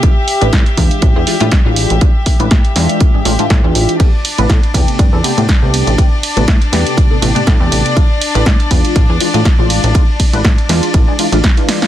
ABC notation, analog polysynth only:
X:1
M:4/4
L:1/16
Q:"Swing 16ths" 1/4=121
K:Ephr
V:1 name="Analog polysynth"
[E,^G,DF] z2 [E,G,DB] z2 [E,G,DF]3 [E,G,D^G] [E,G,DF] [E,G,DF] z [E,G,DF]3 | [E,^G,DF] z2 [E,G,DB] z2 [E,G,DF]3 [E,G,D^G] [E,G,DF] [E,G,DF] z [E,G,DF]3 | [C,A,B,G] z2 [C,A,B,B] z2 [C,A,B,G]3 [C,A,B,A] [C,A,B,G] [C,A,B,G] z [C,A,B,G]3 | [C,A,B,G] z2 [C,A,B,B] z2 [C,A,B,G]3 [C,A,B,A] [C,A,B,G] [C,A,B,G] z [C,A,B,G]3 |
[E,^G,DF] z2 [E,G,DB] z2 [E,G,DF]3 [E,G,D^G] [E,G,DF] [E,G,DF] z [E,G,DF]3 | [E,^G,DF] z2 [E,G,DB] z2 [E,G,DF]3 [E,G,D^G] [E,G,DF] [E,G,DF] z [E,G,DF]3 |]